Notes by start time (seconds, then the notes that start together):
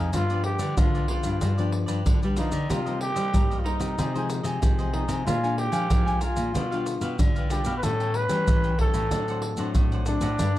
Already playing: C3 D#4 G#4 C5 F5
0.13 G2 F3 B3 D4 F4 G4 B4 D5, pandeiro, maracas, surdo
0.30 F3 B3 D4 G4 B4 D5, pandeiro, maracas
0.44 G4, muted cavaquinho stroke, pandeiro
0.59 D3 G4 B4 D5, pandeiro, maracas
0.77 D3 F3 B3 D4 F4 G4 B4 D5, pandeiro, maracas, surdo
0.95 G4 B4 D5, pandeiro, maracas
1.08 F3 B3 D4 F4 G4 B4 D5, pandeiro
1.23 G2, pandeiro, maracas
1.41 G2 F4 G4 B4 D5, pandeiro, maracas, surdo
1.58 F3 B3 D4 G4 B4 D5, pandeiro, maracas
1.72 muted cavaquinho stroke, pandeiro
1.86 G2 G4 B4 D5, pandeiro, maracas
2.06 D3 F3 B3 D4, pandeiro, maracas, surdo
2.23 G3 G4 B4 D5, pandeiro, maracas
2.36 F3 B3 D4 D#4 F4 G4 B4 D5, pandeiro, maracas
2.51 D3 G4 B4 D5, pandeiro, maracas
2.69 C3 G3 A#3 D#4 F4 A#4 C5 D#5, pandeiro, maracas, surdo
2.86 G3 A#3 D#4 A#4 C5 D#5, pandeiro, maracas
3.01 G4, muted cavaquinho stroke, pandeiro
3.15 G3 A#4 C5 D#5, pandeiro, maracas
3.33 G2 G3 A#3 D#4 A#4 C5 D#5, pandeiro, maracas, surdo
3.50 A#4 C5 D#5, pandeiro, maracas
3.59 F4
3.64 G3 A#3 D#4 A#4 C5 D#5, pandeiro
3.80 C3, pandeiro, maracas
3.97 C3 F3 G#3 D#4 F4 G#4 C5 D#5, pandeiro, maracas, surdo
4.14 F3 G#3 D#4 G#4 C5 D#5, pandeiro, maracas
4.28 muted cavaquinho stroke, pandeiro, maracas
4.43 C3 G#4 C5 D#5, pandeiro, maracas
4.62 C3 F3 G#3 D#4, pandeiro, maracas, surdo
4.78 G#4 C5 D#5, pandeiro, maracas
4.93 F3 G#3 D#4 F4 G#4 C5 D#5, pandeiro
5.08 C3 G#4 C5 D#5, pandeiro, maracas
5.25 A#2 G#3 D4 F4 A#4 F5 G#5, pandeiro, maracas, surdo
5.43 G#3 D4 F4 A#4 F5 G#5, pandeiro, maracas
5.57 G4, muted cavaquinho stroke, pandeiro
5.72 F3 A#4 F5 G#5, pandeiro, maracas
5.90 F3 G#3 D4 F4 A#4 F5 G#5, pandeiro, maracas, surdo
6.06 A#4 F5 G#5, pandeiro, maracas
6.20 G#3 D4 F4 A#4 F5 G#5, pandeiro, maracas
6.36 A#2, pandeiro, maracas
6.54 B2 G3 D4 F4 G4 B4 F5, pandeiro, maracas, surdo
6.71 G3 D4 F4 G4 B4 F5, pandeiro, maracas
6.86 muted cavaquinho stroke, pandeiro, maracas
7.01 B2 G4 B4 F5, pandeiro, maracas
7.19 B2 D3 G3 D4 F4, pandeiro, maracas, surdo
7.36 G4 B4 F5, pandeiro, maracas
7.50 G3 D4 F4 G4 B4 F5, pandeiro, maracas
7.65 B2 G4 B4 F5, pandeiro, maracas
7.77 B4
7.83 A2 G3 C#4 E4 G4 A4 C#5 G5, pandeiro, maracas, surdo
8.00 A4 C#5 G5, pandeiro, maracas
8.14 B4, muted cavaquinho stroke, pandeiro
8.29 E3 G3 C#4 E4 A4 C#5 G5, pandeiro, maracas
8.47 E3 G4 A4 C#5 G5, pandeiro, maracas, surdo
8.64 A4 C#5 G5, pandeiro, maracas
8.78 G3 C#4 E4 G4 A4 C#5 G5, pandeiro, surdo
8.94 A2, pandeiro, maracas
9.11 A2 F#3 C4 D4 C5 D5 F#5, pandeiro, maracas, surdo
9.28 C5 D5 F#5, pandeiro, maracas
9.42 muted cavaquinho stroke, pandeiro
9.57 A2 F#3 C4 D4 C5 D5 F#5, pandeiro, maracas
9.75 A2, pandeiro, maracas, surdo
9.92 C5 D5 F#5, pandeiro, maracas
10.06 F#3 C4 D4 C5 D5 F#5, pandeiro, maracas
10.21 A2 C5 D5 F#5, pandeiro, maracas
10.39 G2 G3 B3 D4 G4 B4 D5, pandeiro, maracas, surdo